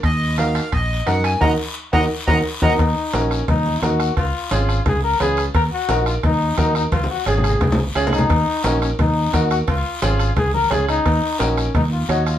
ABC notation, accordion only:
X:1
M:4/4
L:1/8
Q:1/4=174
K:Ebm
V:1 name="Accordion"
e2 f2 e2 g a | [egb] z2 [egb] z [egb] z [egb] | z8 | z8 |
z8 | z8 | z8 | z8 |
z8 |]